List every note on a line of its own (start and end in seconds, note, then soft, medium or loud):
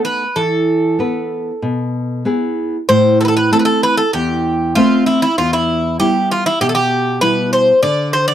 0.00 0.23 A3 medium
0.00 0.23 B3 soft
0.00 0.23 D#4 medium
0.05 0.37 B4 medium
0.36 0.98 E3 medium
0.36 2.22 A4 medium
0.99 1.50 B3 soft
0.99 1.50 E4 soft
0.99 1.50 B4 medium
1.62 2.24 B2 medium
2.25 2.76 B3 soft
2.25 2.76 E4 soft
2.25 2.76 G#4 medium
2.89 3.49 A2 medium
2.89 3.20 C5 medium
3.21 3.24 A4 medium
3.25 3.36 A4 medium
3.25 3.28 B4 medium
3.37 3.52 B4 medium
3.51 4.01 A3 soft
3.51 4.01 C4 soft
3.51 4.02 E4 medium
3.51 3.58 A4 medium
3.59 3.65 B4 medium
3.65 3.82 A4 medium
3.83 3.97 B4 medium
3.97 4.12 A4 medium
4.13 4.74 E2 medium
4.13 4.75 G4 medium
4.75 5.25 A3 medium
4.75 5.26 C4 medium
4.75 5.06 F4 medium
4.75 5.26 E5 medium
5.06 5.21 E4 medium
5.22 5.38 E4 medium
5.38 5.98 E2 medium
5.38 5.53 F4 medium
5.53 5.96 E4 medium
5.99 6.49 G3 soft
5.99 6.49 B3 soft
5.99 6.49 E4 medium
5.99 6.28 G4 medium
6.31 6.45 F4 medium
6.46 6.60 E4 medium
6.61 7.20 B2 medium
6.61 6.67 G4 medium
6.69 6.74 A4 medium
6.75 7.19 G4 medium
7.21 7.71 B2 soft
7.21 7.71 G3 soft
7.21 7.71 E4 medium
7.21 7.50 B4 loud
7.53 7.81 C5 medium
7.83 8.34 D3 medium
7.83 8.11 D5 medium
8.13 8.27 C5 medium
8.28 8.34 D5 medium